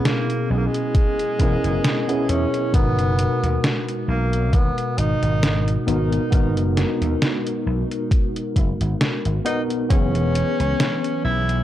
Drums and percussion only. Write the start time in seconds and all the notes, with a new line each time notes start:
0.05 snare, closed hi-hat
0.30 closed hi-hat
0.74 closed hi-hat
0.95 kick, closed hi-hat
1.19 closed hi-hat
1.39 kick, closed hi-hat
1.64 closed hi-hat
1.84 snare, closed hi-hat
2.09 closed hi-hat
2.29 closed hi-hat
2.54 closed hi-hat
2.74 kick, closed hi-hat
2.99 closed hi-hat
3.19 closed hi-hat
3.44 closed hi-hat
3.64 snare, closed hi-hat
3.89 closed hi-hat
4.33 closed hi-hat
4.53 kick, closed hi-hat
4.78 closed hi-hat
4.98 closed hi-hat
5.23 closed hi-hat
5.43 snare, closed hi-hat
5.68 closed hi-hat
5.88 closed hi-hat
6.12 closed hi-hat
6.32 kick, closed hi-hat
6.57 closed hi-hat
6.77 snare, closed hi-hat
7.02 closed hi-hat
7.22 snare, closed hi-hat
7.47 closed hi-hat
7.92 closed hi-hat
8.11 kick, closed hi-hat
8.36 closed hi-hat
8.56 kick, closed hi-hat
8.81 closed hi-hat
9.01 snare, closed hi-hat
9.25 closed hi-hat
9.46 closed hi-hat
9.70 closed hi-hat
9.90 kick, closed hi-hat
10.15 closed hi-hat
10.35 closed hi-hat
10.60 closed hi-hat
10.80 snare, closed hi-hat
11.04 closed hi-hat
11.49 closed hi-hat